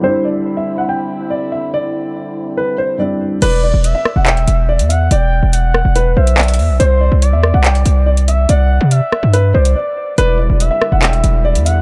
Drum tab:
CC |--------------------------------|--------------------------------|x-------------------------------|--------------------------------|
HH |--------------------------------|--------------------------------|x-------x-------x-x-x-----x-x---|x-------x-------x-----x-xxxxo---|
CP |--------------------------------|--------------------------------|----------------x---------------|------------------------x-------|
SD |--------------------------------|--------------------------------|------------r-------------------|------------r-------------------|

CC |--------------------------------|--------------------------------|--------------------------------|
HH |x-------x-------x-x-x-----x-x---|x-------x-------x-----x---------|x-------x-------x-x-x-----x-x---|
CP |----------------x---------------|--------------------------------|----------------x---------------|
SD |------------r-------------------|------------r-------------------|------------r-------------------|